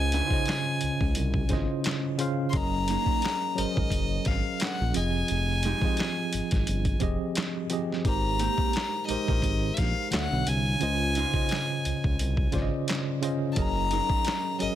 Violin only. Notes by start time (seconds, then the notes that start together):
Already playing: G#5
2.50 C6
2.56 A#5
3.59 D#5
4.28 F5
4.63 F#5
4.96 G#5
8.08 A#5
9.08 D#5
9.74 E5
9.78 F5
10.14 F#5
10.48 G#5
13.52 A5
13.60 A#5
14.62 D#5